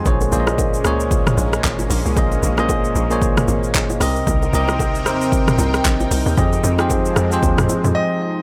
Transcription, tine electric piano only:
0.00 0.20 G#5 medium
0.05 0.27 A#2 medium
0.05 0.28 A#3 medium
0.05 0.28 G#4 medium
0.05 0.28 C5 medium
0.05 0.28 C#5 loud
0.31 0.76 A#2 loud
0.31 0.76 A#3 medium
0.31 0.76 G#4 medium
0.31 0.76 C5 medium
0.31 0.40 D5 medium
0.40 0.80 D#5 loud
0.84 1.70 A#2 loud
0.84 1.70 A#3 medium
0.84 1.70 G#4 medium
0.84 1.70 C5 medium
0.84 1.71 C#5 loud
2.16 2.49 A#2 medium
2.16 2.49 A#3 medium
2.16 2.49 G#4 medium
2.16 2.50 C5 medium
2.16 2.50 D#5 loud
2.57 2.98 A#2 medium
2.57 2.98 A#3 medium
2.57 2.99 G#4 medium
2.57 2.99 C5 medium
2.57 2.99 D#5 loud
3.10 3.94 A#2 medium
3.10 3.94 A#3 medium
3.10 3.94 G#4 medium
3.10 3.94 C5 medium
3.10 3.95 C#5 loud
4.00 4.44 C3 loud
4.00 4.44 C4 medium
4.00 4.45 G4 medium
4.00 4.45 A#4 medium
4.00 4.45 D#5 loud
4.53 4.97 C3 medium
4.53 4.97 C4 medium
4.53 4.97 G4 medium
4.53 4.98 A#4 medium
4.53 4.98 D#5 loud
5.05 5.91 C3 medium
5.05 5.91 C4 medium
5.05 5.91 G4 medium
5.05 5.91 A#4 medium
5.05 5.92 C5 loud
6.37 6.70 F3 medium
6.37 6.70 C4 medium
6.37 6.70 G4 medium
6.37 6.70 G#4 medium
6.37 6.71 D#5 medium
6.79 7.19 F3 medium
6.79 7.19 C4 medium
6.79 7.20 G4 medium
6.79 7.20 G#4 medium
6.79 7.20 C5 loud
7.31 8.15 F3 loud
7.31 8.15 C4 medium
7.31 8.15 G4 medium
7.31 8.16 G#4 medium
7.31 8.16 C5 loud

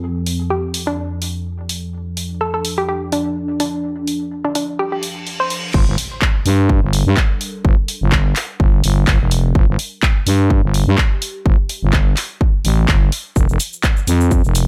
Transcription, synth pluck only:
0.50 0.70 G4 medium
0.87 1.35 D4 loud
2.41 2.49 A4 medium
2.54 2.61 A4 medium
2.78 2.85 G4 medium
2.89 2.97 G4 medium
3.12 3.58 D4 medium
3.60 3.80 D4 medium
4.45 4.51 D4 medium
4.55 4.64 D4 medium
4.79 4.87 G4 medium
4.92 4.99 G4 medium
5.40 5.74 C5 medium

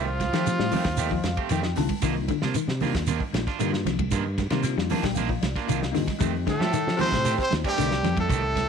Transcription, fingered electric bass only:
0.00 0.29 C2 loud
0.33 0.57 F3 loud
0.59 0.71 A2 medium
0.85 1.20 D#2 loud
1.24 1.36 F2 medium
1.51 1.74 F2 medium
1.76 1.89 C2 medium
1.89 muted fingered electric bass stroke soft
2.03 2.26 C2 loud
2.43 2.55 C3 medium
2.68 2.91 C3 loud
2.95 3.18 D#2 medium
3.33 3.45 A#1 loud
3.60 3.83 G2 medium
3.86 4.09 C2 loud
4.11 4.47 G2 loud
4.51 4.74 C3 loud
4.77 4.89 F2 medium
5.03 5.38 A#1 loud
5.42 5.54 C2 loud
5.69 5.92 C2 medium
5.95 6.07 G2 medium
6.08 muted fingered electric bass stroke soft
6.20 6.44 F2 loud
6.60 6.72 F3 medium
6.87 7.10 F3 medium
7.12 7.35 A2 medium
7.53 7.64 D#2 loud
7.78 8.01 C2 medium
8.03 8.26 F2 loud
8.29 8.64 C2 loud

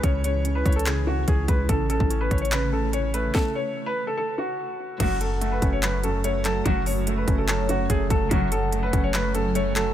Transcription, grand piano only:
0.00 0.03 C#3 medium
0.00 0.23 C#3 loud
0.00 0.86 G#3 medium
0.00 0.45 C#4 medium
0.00 0.66 C#5 medium
0.24 0.85 C#3 medium
0.45 1.26 C#4 medium
0.66 1.69 C#5 loud
0.86 1.05 C#3 medium
1.07 1.68 C#3 medium
1.28 1.69 C#4 medium
1.48 1.69 G#3 medium
1.69 1.88 C#3 medium
1.90 2.50 C#3 medium
2.10 2.92 C#4 medium
2.31 3.35 C#5 medium
2.52 2.71 C#3 medium
2.73 3.76 C#3 medium
2.93 3.97 C#4 medium
3.14 4.17 A3 medium
5.00 5.19 F#2 loud
5.21 5.81 F#2 medium
5.41 6.23 A3 loud
5.62 6.66 C#4 medium
5.83 6.02 F#2 medium
6.04 6.64 F#2 medium
6.24 7.05 A3 medium
6.45 7.48 F#3 medium
6.66 6.85 F#2 loud
6.86 7.47 F#2 medium
7.07 7.88 A3 medium
7.28 8.31 C#4 medium
7.48 7.68 F#2 medium
7.69 8.30 F#2 medium
7.90 8.71 A3 medium
8.10 9.14 F#3 medium
8.31 8.50 F#2 loud
8.52 9.12 F#2 medium
8.72 9.54 A3 medium
8.93 9.94 C#4 medium
9.14 9.33 F#2 medium
9.35 9.94 F#2 medium
9.55 9.94 A3 medium
9.76 9.94 F#3 medium

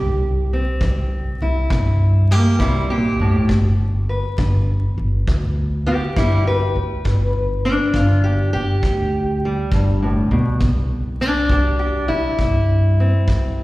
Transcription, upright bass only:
0.00 0.62 C2 loud
0.81 1.29 C2 loud
1.42 1.65 C2 medium
1.71 2.42 G2 medium
2.59 3.07 C2 medium
3.20 3.31 G2 medium
3.49 4.20 G1 medium
4.38 4.86 G1 medium
4.98 5.21 G1 medium
5.27 5.98 D2 loud
6.17 6.64 G1 medium
6.76 6.88 D2 medium
7.05 7.76 G1 loud
7.93 8.41 G1 loud
8.54 8.78 G1 medium
8.83 9.54 D2 loud
9.72 10.19 G1 medium
10.31 10.43 D2 medium
10.61 11.32 C2 medium
11.49 11.97 C2 medium
12.09 12.33 C2 medium
12.39 13.10 G2 loud
13.28 13.63 C2 medium

